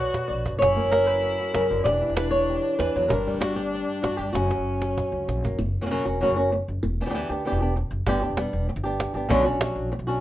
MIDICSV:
0, 0, Header, 1, 6, 480
1, 0, Start_track
1, 0, Tempo, 310238
1, 952, Time_signature, 4, 2, 24, 8
1, 15788, End_track
2, 0, Start_track
2, 0, Title_t, "Violin"
2, 0, Program_c, 0, 40
2, 0, Note_on_c, 0, 66, 92
2, 710, Note_off_c, 0, 66, 0
2, 950, Note_on_c, 0, 64, 88
2, 2823, Note_off_c, 0, 64, 0
2, 2894, Note_on_c, 0, 62, 89
2, 4755, Note_off_c, 0, 62, 0
2, 4817, Note_on_c, 0, 62, 92
2, 6725, Note_on_c, 0, 61, 82
2, 6748, Note_off_c, 0, 62, 0
2, 8407, Note_off_c, 0, 61, 0
2, 15788, End_track
3, 0, Start_track
3, 0, Title_t, "Nylon-string guitar"
3, 0, Program_c, 1, 24
3, 0, Note_on_c, 1, 47, 64
3, 0, Note_on_c, 1, 59, 54
3, 0, Note_on_c, 1, 74, 100
3, 231, Note_on_c, 1, 66, 39
3, 414, Note_off_c, 1, 74, 0
3, 432, Note_on_c, 1, 74, 82
3, 900, Note_off_c, 1, 74, 0
3, 906, Note_on_c, 1, 73, 108
3, 918, Note_off_c, 1, 59, 0
3, 926, Note_off_c, 1, 66, 0
3, 940, Note_on_c, 1, 42, 57
3, 950, Note_off_c, 1, 47, 0
3, 1177, Note_on_c, 1, 58, 56
3, 1408, Note_off_c, 1, 73, 0
3, 1415, Note_on_c, 1, 70, 88
3, 1653, Note_off_c, 1, 70, 0
3, 1653, Note_on_c, 1, 71, 97
3, 1915, Note_on_c, 1, 66, 48
3, 2145, Note_off_c, 1, 66, 0
3, 2164, Note_on_c, 1, 66, 35
3, 2374, Note_off_c, 1, 71, 0
3, 2381, Note_on_c, 1, 70, 83
3, 2390, Note_on_c, 1, 49, 62
3, 2627, Note_off_c, 1, 49, 0
3, 2633, Note_on_c, 1, 50, 67
3, 2841, Note_off_c, 1, 70, 0
3, 2847, Note_on_c, 1, 74, 100
3, 2848, Note_off_c, 1, 58, 0
3, 2858, Note_off_c, 1, 66, 0
3, 2875, Note_on_c, 1, 52, 64
3, 2880, Note_off_c, 1, 42, 0
3, 2880, Note_off_c, 1, 50, 0
3, 2891, Note_on_c, 1, 64, 42
3, 2899, Note_on_c, 1, 67, 46
3, 3101, Note_off_c, 1, 64, 0
3, 3119, Note_on_c, 1, 64, 58
3, 3342, Note_off_c, 1, 74, 0
3, 3348, Note_on_c, 1, 71, 103
3, 3564, Note_off_c, 1, 71, 0
3, 3570, Note_on_c, 1, 73, 85
3, 3849, Note_off_c, 1, 67, 0
3, 3867, Note_on_c, 1, 67, 52
3, 4307, Note_off_c, 1, 73, 0
3, 4313, Note_on_c, 1, 71, 98
3, 4319, Note_off_c, 1, 52, 0
3, 4338, Note_on_c, 1, 52, 73
3, 4574, Note_off_c, 1, 52, 0
3, 4580, Note_on_c, 1, 54, 63
3, 4766, Note_off_c, 1, 71, 0
3, 4772, Note_on_c, 1, 70, 94
3, 4780, Note_off_c, 1, 64, 0
3, 4793, Note_off_c, 1, 67, 0
3, 4817, Note_off_c, 1, 54, 0
3, 4826, Note_on_c, 1, 43, 72
3, 5063, Note_on_c, 1, 55, 61
3, 5264, Note_off_c, 1, 70, 0
3, 5270, Note_on_c, 1, 66, 96
3, 5502, Note_off_c, 1, 66, 0
3, 5509, Note_on_c, 1, 67, 93
3, 5793, Note_on_c, 1, 62, 52
3, 6228, Note_off_c, 1, 67, 0
3, 6234, Note_on_c, 1, 66, 81
3, 6447, Note_off_c, 1, 66, 0
3, 6447, Note_on_c, 1, 67, 79
3, 6689, Note_off_c, 1, 67, 0
3, 6695, Note_on_c, 1, 66, 80
3, 6710, Note_off_c, 1, 55, 0
3, 6712, Note_off_c, 1, 43, 0
3, 6715, Note_off_c, 1, 62, 0
3, 6734, Note_on_c, 1, 42, 73
3, 6974, Note_on_c, 1, 54, 60
3, 8417, Note_on_c, 1, 58, 53
3, 8622, Note_off_c, 1, 54, 0
3, 8624, Note_off_c, 1, 42, 0
3, 8625, Note_off_c, 1, 58, 0
3, 8632, Note_off_c, 1, 66, 0
3, 8993, Note_on_c, 1, 54, 48
3, 8999, Note_on_c, 1, 58, 48
3, 9011, Note_on_c, 1, 61, 49
3, 9011, Note_on_c, 1, 66, 53
3, 9045, Note_off_c, 1, 54, 0
3, 9054, Note_off_c, 1, 58, 0
3, 9059, Note_off_c, 1, 66, 0
3, 9063, Note_off_c, 1, 61, 0
3, 9063, Note_on_c, 1, 54, 58
3, 9073, Note_on_c, 1, 58, 65
3, 9077, Note_on_c, 1, 66, 65
3, 9082, Note_on_c, 1, 61, 60
3, 9124, Note_off_c, 1, 58, 0
3, 9125, Note_off_c, 1, 54, 0
3, 9129, Note_off_c, 1, 61, 0
3, 9135, Note_off_c, 1, 66, 0
3, 9137, Note_on_c, 1, 49, 63
3, 9142, Note_on_c, 1, 58, 76
3, 9143, Note_on_c, 1, 54, 69
3, 9147, Note_on_c, 1, 61, 73
3, 9153, Note_on_c, 1, 66, 70
3, 9341, Note_off_c, 1, 66, 0
3, 9360, Note_off_c, 1, 61, 0
3, 9360, Note_on_c, 1, 66, 50
3, 9363, Note_off_c, 1, 49, 0
3, 9366, Note_off_c, 1, 54, 0
3, 9366, Note_off_c, 1, 58, 0
3, 9378, Note_on_c, 1, 61, 42
3, 9395, Note_on_c, 1, 58, 40
3, 9594, Note_off_c, 1, 66, 0
3, 9598, Note_off_c, 1, 58, 0
3, 9601, Note_on_c, 1, 49, 75
3, 9604, Note_off_c, 1, 61, 0
3, 9610, Note_on_c, 1, 54, 73
3, 9616, Note_on_c, 1, 58, 72
3, 9629, Note_on_c, 1, 61, 81
3, 9634, Note_on_c, 1, 66, 85
3, 9827, Note_off_c, 1, 66, 0
3, 9834, Note_off_c, 1, 49, 0
3, 9839, Note_off_c, 1, 54, 0
3, 9842, Note_off_c, 1, 58, 0
3, 9846, Note_on_c, 1, 66, 59
3, 9849, Note_off_c, 1, 61, 0
3, 9865, Note_on_c, 1, 61, 56
3, 9878, Note_on_c, 1, 58, 52
3, 10077, Note_off_c, 1, 58, 0
3, 10077, Note_off_c, 1, 66, 0
3, 10078, Note_off_c, 1, 61, 0
3, 10843, Note_on_c, 1, 52, 53
3, 10850, Note_on_c, 1, 59, 48
3, 10852, Note_on_c, 1, 62, 49
3, 10864, Note_on_c, 1, 67, 56
3, 10898, Note_off_c, 1, 52, 0
3, 10903, Note_off_c, 1, 62, 0
3, 10904, Note_off_c, 1, 59, 0
3, 10916, Note_off_c, 1, 67, 0
3, 10917, Note_on_c, 1, 52, 56
3, 10922, Note_on_c, 1, 62, 64
3, 10923, Note_on_c, 1, 59, 59
3, 10935, Note_on_c, 1, 67, 64
3, 10958, Note_off_c, 1, 52, 0
3, 10969, Note_off_c, 1, 59, 0
3, 10976, Note_off_c, 1, 67, 0
3, 10976, Note_on_c, 1, 52, 68
3, 10978, Note_off_c, 1, 62, 0
3, 10988, Note_on_c, 1, 59, 74
3, 10995, Note_on_c, 1, 67, 71
3, 10996, Note_on_c, 1, 62, 75
3, 11031, Note_off_c, 1, 52, 0
3, 11038, Note_off_c, 1, 59, 0
3, 11045, Note_off_c, 1, 62, 0
3, 11049, Note_off_c, 1, 67, 0
3, 11049, Note_on_c, 1, 52, 78
3, 11057, Note_on_c, 1, 59, 67
3, 11064, Note_on_c, 1, 62, 84
3, 11068, Note_on_c, 1, 67, 83
3, 11268, Note_off_c, 1, 67, 0
3, 11277, Note_off_c, 1, 52, 0
3, 11281, Note_off_c, 1, 59, 0
3, 11284, Note_off_c, 1, 62, 0
3, 11286, Note_on_c, 1, 67, 51
3, 11310, Note_on_c, 1, 62, 45
3, 11326, Note_on_c, 1, 59, 44
3, 11515, Note_off_c, 1, 67, 0
3, 11521, Note_off_c, 1, 59, 0
3, 11526, Note_on_c, 1, 52, 74
3, 11527, Note_off_c, 1, 62, 0
3, 11539, Note_on_c, 1, 59, 75
3, 11550, Note_on_c, 1, 62, 82
3, 11561, Note_on_c, 1, 67, 82
3, 11747, Note_off_c, 1, 67, 0
3, 11754, Note_off_c, 1, 52, 0
3, 11761, Note_off_c, 1, 59, 0
3, 11765, Note_on_c, 1, 67, 66
3, 11766, Note_off_c, 1, 62, 0
3, 11790, Note_on_c, 1, 62, 64
3, 11806, Note_on_c, 1, 59, 54
3, 11993, Note_off_c, 1, 67, 0
3, 11998, Note_off_c, 1, 59, 0
3, 12006, Note_off_c, 1, 62, 0
3, 12484, Note_on_c, 1, 50, 82
3, 12489, Note_on_c, 1, 55, 89
3, 12499, Note_on_c, 1, 59, 84
3, 12510, Note_on_c, 1, 62, 99
3, 12514, Note_on_c, 1, 67, 98
3, 12694, Note_off_c, 1, 67, 0
3, 12711, Note_off_c, 1, 50, 0
3, 12713, Note_off_c, 1, 62, 0
3, 12713, Note_on_c, 1, 67, 52
3, 12714, Note_off_c, 1, 55, 0
3, 12719, Note_off_c, 1, 59, 0
3, 12732, Note_on_c, 1, 62, 48
3, 12748, Note_on_c, 1, 59, 42
3, 12944, Note_off_c, 1, 59, 0
3, 12945, Note_off_c, 1, 67, 0
3, 12947, Note_on_c, 1, 55, 57
3, 12955, Note_off_c, 1, 62, 0
3, 12963, Note_on_c, 1, 59, 59
3, 12973, Note_on_c, 1, 62, 55
3, 12980, Note_on_c, 1, 67, 65
3, 13421, Note_off_c, 1, 55, 0
3, 13429, Note_off_c, 1, 59, 0
3, 13434, Note_off_c, 1, 62, 0
3, 13438, Note_off_c, 1, 67, 0
3, 13671, Note_on_c, 1, 67, 65
3, 13695, Note_on_c, 1, 62, 61
3, 13706, Note_on_c, 1, 59, 49
3, 14135, Note_off_c, 1, 67, 0
3, 14149, Note_off_c, 1, 62, 0
3, 14154, Note_on_c, 1, 67, 52
3, 14159, Note_off_c, 1, 59, 0
3, 14168, Note_on_c, 1, 62, 47
3, 14185, Note_on_c, 1, 59, 46
3, 14367, Note_on_c, 1, 47, 90
3, 14368, Note_off_c, 1, 62, 0
3, 14369, Note_on_c, 1, 50, 89
3, 14381, Note_off_c, 1, 59, 0
3, 14382, Note_on_c, 1, 54, 96
3, 14383, Note_off_c, 1, 67, 0
3, 14387, Note_on_c, 1, 62, 90
3, 14394, Note_on_c, 1, 61, 89
3, 14401, Note_on_c, 1, 66, 91
3, 14597, Note_off_c, 1, 66, 0
3, 14609, Note_off_c, 1, 47, 0
3, 14610, Note_off_c, 1, 50, 0
3, 14610, Note_off_c, 1, 61, 0
3, 14616, Note_on_c, 1, 66, 61
3, 14617, Note_off_c, 1, 54, 0
3, 14619, Note_off_c, 1, 62, 0
3, 14629, Note_on_c, 1, 61, 55
3, 14639, Note_on_c, 1, 62, 52
3, 14651, Note_on_c, 1, 54, 43
3, 14830, Note_off_c, 1, 54, 0
3, 14849, Note_off_c, 1, 62, 0
3, 14849, Note_on_c, 1, 54, 48
3, 14853, Note_off_c, 1, 66, 0
3, 14859, Note_off_c, 1, 61, 0
3, 14868, Note_on_c, 1, 62, 50
3, 14881, Note_on_c, 1, 61, 49
3, 14887, Note_on_c, 1, 66, 50
3, 15328, Note_off_c, 1, 54, 0
3, 15333, Note_off_c, 1, 62, 0
3, 15337, Note_off_c, 1, 61, 0
3, 15339, Note_off_c, 1, 66, 0
3, 15580, Note_on_c, 1, 66, 68
3, 15595, Note_on_c, 1, 61, 59
3, 15612, Note_on_c, 1, 62, 57
3, 15618, Note_on_c, 1, 54, 48
3, 15788, Note_off_c, 1, 54, 0
3, 15788, Note_off_c, 1, 61, 0
3, 15788, Note_off_c, 1, 62, 0
3, 15788, Note_off_c, 1, 66, 0
3, 15788, End_track
4, 0, Start_track
4, 0, Title_t, "Upright bass"
4, 0, Program_c, 2, 32
4, 461, Note_on_c, 2, 34, 70
4, 682, Note_off_c, 2, 34, 0
4, 704, Note_on_c, 2, 30, 69
4, 925, Note_off_c, 2, 30, 0
4, 949, Note_on_c, 2, 30, 78
4, 1225, Note_off_c, 2, 30, 0
4, 1319, Note_on_c, 2, 30, 71
4, 2050, Note_off_c, 2, 30, 0
4, 2398, Note_on_c, 2, 42, 82
4, 2583, Note_off_c, 2, 42, 0
4, 2645, Note_on_c, 2, 30, 81
4, 2828, Note_off_c, 2, 30, 0
4, 2879, Note_on_c, 2, 28, 88
4, 3155, Note_off_c, 2, 28, 0
4, 3239, Note_on_c, 2, 28, 77
4, 3972, Note_off_c, 2, 28, 0
4, 4321, Note_on_c, 2, 40, 82
4, 4508, Note_off_c, 2, 40, 0
4, 4575, Note_on_c, 2, 40, 98
4, 4756, Note_off_c, 2, 40, 0
4, 4813, Note_on_c, 2, 31, 85
4, 5086, Note_off_c, 2, 31, 0
4, 5174, Note_on_c, 2, 31, 71
4, 5901, Note_off_c, 2, 31, 0
4, 6248, Note_on_c, 2, 43, 84
4, 6432, Note_off_c, 2, 43, 0
4, 6479, Note_on_c, 2, 31, 81
4, 6666, Note_off_c, 2, 31, 0
4, 6719, Note_on_c, 2, 30, 93
4, 6997, Note_off_c, 2, 30, 0
4, 7080, Note_on_c, 2, 30, 68
4, 7720, Note_off_c, 2, 30, 0
4, 7922, Note_on_c, 2, 37, 83
4, 8142, Note_off_c, 2, 37, 0
4, 8171, Note_on_c, 2, 34, 84
4, 8387, Note_off_c, 2, 34, 0
4, 8413, Note_on_c, 2, 30, 80
4, 8628, Note_off_c, 2, 30, 0
4, 8658, Note_on_c, 2, 30, 77
4, 8927, Note_off_c, 2, 30, 0
4, 9022, Note_on_c, 2, 28, 78
4, 9289, Note_off_c, 2, 28, 0
4, 9375, Note_on_c, 2, 28, 77
4, 9645, Note_off_c, 2, 28, 0
4, 9740, Note_on_c, 2, 30, 91
4, 10189, Note_off_c, 2, 30, 0
4, 10339, Note_on_c, 2, 30, 83
4, 10516, Note_off_c, 2, 30, 0
4, 10570, Note_on_c, 2, 28, 81
4, 10840, Note_off_c, 2, 28, 0
4, 10936, Note_on_c, 2, 38, 85
4, 11204, Note_off_c, 2, 38, 0
4, 11289, Note_on_c, 2, 38, 83
4, 11559, Note_off_c, 2, 38, 0
4, 11636, Note_on_c, 2, 28, 101
4, 12091, Note_off_c, 2, 28, 0
4, 12234, Note_on_c, 2, 30, 92
4, 12417, Note_off_c, 2, 30, 0
4, 12475, Note_on_c, 2, 31, 92
4, 12748, Note_off_c, 2, 31, 0
4, 12838, Note_on_c, 2, 28, 76
4, 13110, Note_off_c, 2, 28, 0
4, 13198, Note_on_c, 2, 28, 89
4, 13469, Note_off_c, 2, 28, 0
4, 13555, Note_on_c, 2, 31, 102
4, 14007, Note_off_c, 2, 31, 0
4, 14139, Note_on_c, 2, 31, 88
4, 14326, Note_off_c, 2, 31, 0
4, 14379, Note_on_c, 2, 35, 95
4, 14655, Note_off_c, 2, 35, 0
4, 14735, Note_on_c, 2, 34, 73
4, 15012, Note_off_c, 2, 34, 0
4, 15095, Note_on_c, 2, 34, 79
4, 15372, Note_off_c, 2, 34, 0
4, 15457, Note_on_c, 2, 35, 89
4, 15732, Note_off_c, 2, 35, 0
4, 15788, End_track
5, 0, Start_track
5, 0, Title_t, "Cajon"
5, 220, Note_on_c, 9, 36, 89
5, 375, Note_off_c, 9, 36, 0
5, 707, Note_on_c, 9, 36, 81
5, 861, Note_off_c, 9, 36, 0
5, 961, Note_on_c, 9, 36, 97
5, 1116, Note_off_c, 9, 36, 0
5, 1430, Note_on_c, 9, 38, 89
5, 1585, Note_off_c, 9, 38, 0
5, 1915, Note_on_c, 9, 38, 25
5, 2070, Note_off_c, 9, 38, 0
5, 2390, Note_on_c, 9, 38, 84
5, 2545, Note_off_c, 9, 38, 0
5, 2631, Note_on_c, 9, 38, 29
5, 2786, Note_off_c, 9, 38, 0
5, 2869, Note_on_c, 9, 36, 93
5, 3024, Note_off_c, 9, 36, 0
5, 3353, Note_on_c, 9, 38, 101
5, 3508, Note_off_c, 9, 38, 0
5, 3853, Note_on_c, 9, 38, 29
5, 4007, Note_off_c, 9, 38, 0
5, 4330, Note_on_c, 9, 38, 90
5, 4484, Note_off_c, 9, 38, 0
5, 4799, Note_on_c, 9, 36, 99
5, 4954, Note_off_c, 9, 36, 0
5, 5285, Note_on_c, 9, 38, 101
5, 5439, Note_off_c, 9, 38, 0
5, 5530, Note_on_c, 9, 38, 31
5, 5685, Note_off_c, 9, 38, 0
5, 6248, Note_on_c, 9, 38, 85
5, 6402, Note_off_c, 9, 38, 0
5, 6733, Note_on_c, 9, 38, 105
5, 6888, Note_off_c, 9, 38, 0
5, 6976, Note_on_c, 9, 38, 81
5, 7131, Note_off_c, 9, 38, 0
5, 7451, Note_on_c, 9, 38, 83
5, 7605, Note_off_c, 9, 38, 0
5, 7698, Note_on_c, 9, 36, 83
5, 7852, Note_off_c, 9, 36, 0
5, 8181, Note_on_c, 9, 36, 76
5, 8336, Note_off_c, 9, 36, 0
5, 8429, Note_on_c, 9, 36, 82
5, 8583, Note_off_c, 9, 36, 0
5, 12478, Note_on_c, 9, 36, 100
5, 12633, Note_off_c, 9, 36, 0
5, 12953, Note_on_c, 9, 38, 101
5, 13108, Note_off_c, 9, 38, 0
5, 13196, Note_on_c, 9, 38, 33
5, 13351, Note_off_c, 9, 38, 0
5, 13444, Note_on_c, 9, 38, 30
5, 13599, Note_off_c, 9, 38, 0
5, 13924, Note_on_c, 9, 38, 100
5, 14078, Note_off_c, 9, 38, 0
5, 14151, Note_on_c, 9, 38, 27
5, 14306, Note_off_c, 9, 38, 0
5, 14396, Note_on_c, 9, 36, 98
5, 14551, Note_off_c, 9, 36, 0
5, 14865, Note_on_c, 9, 38, 110
5, 15020, Note_off_c, 9, 38, 0
5, 15349, Note_on_c, 9, 38, 29
5, 15504, Note_off_c, 9, 38, 0
5, 15788, End_track
6, 0, Start_track
6, 0, Title_t, "Muted nylon-string guitar strokes"
6, 8643, Note_on_c, 9, 29, 87
6, 8798, Note_off_c, 9, 29, 0
6, 10090, Note_on_c, 9, 29, 69
6, 10245, Note_off_c, 9, 29, 0
6, 10566, Note_on_c, 9, 29, 86
6, 10720, Note_off_c, 9, 29, 0
6, 12008, Note_on_c, 9, 29, 74
6, 12163, Note_off_c, 9, 29, 0
6, 13443, Note_on_c, 9, 29, 81
6, 13597, Note_off_c, 9, 29, 0
6, 15341, Note_on_c, 9, 29, 61
6, 15496, Note_off_c, 9, 29, 0
6, 15788, End_track
0, 0, End_of_file